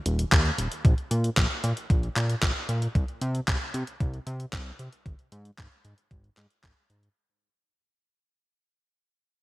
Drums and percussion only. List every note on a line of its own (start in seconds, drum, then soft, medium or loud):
0.06 closed hi-hat medium
0.19 closed hi-hat medium
0.32 kick loud
0.32 clap loud
0.32 closed hi-hat medium
0.45 closed hi-hat soft
0.58 closed hi-hat medium
0.72 closed hi-hat medium
0.85 kick loud
0.85 closed hi-hat medium
0.98 closed hi-hat soft
1.11 closed hi-hat medium
1.24 closed hi-hat soft
1.37 kick loud
1.37 clap loud
1.37 closed hi-hat soft
1.51 closed hi-hat soft
1.64 closed hi-hat medium
1.77 closed hi-hat medium
1.90 kick loud
1.90 closed hi-hat soft
2.03 closed hi-hat soft
2.16 clap medium
2.16 closed hi-hat medium
2.30 closed hi-hat medium
2.43 kick loud
2.43 clap loud
2.43 closed hi-hat soft
2.56 closed hi-hat soft
2.69 closed hi-hat medium
2.82 closed hi-hat medium
2.95 kick loud
2.95 closed hi-hat soft
3.08 closed hi-hat soft
3.21 closed hi-hat medium
3.35 closed hi-hat soft
3.48 kick loud
3.48 clap loud
3.61 closed hi-hat soft
3.74 closed hi-hat medium
3.87 closed hi-hat soft
4.00 kick loud
4.00 closed hi-hat soft
4.14 closed hi-hat soft
4.27 closed hi-hat medium
4.40 closed hi-hat soft
4.53 kick loud
4.53 clap loud
4.53 closed hi-hat soft
4.66 closed hi-hat soft
4.79 closed hi-hat medium
4.93 closed hi-hat soft
5.06 kick loud
5.06 closed hi-hat soft
5.19 closed hi-hat soft
5.32 closed hi-hat medium
5.45 closed hi-hat soft
5.58 kick loud
5.58 clap loud
5.58 closed hi-hat soft
5.72 closed hi-hat soft
5.85 closed hi-hat medium
5.98 closed hi-hat soft
6.11 kick loud
6.11 closed hi-hat soft
6.24 closed hi-hat soft
6.37 clap medium
6.37 closed hi-hat medium
6.50 closed hi-hat soft
6.64 kick loud
6.64 clap loud
6.77 closed hi-hat soft
6.90 closed hi-hat medium
7.03 closed hi-hat soft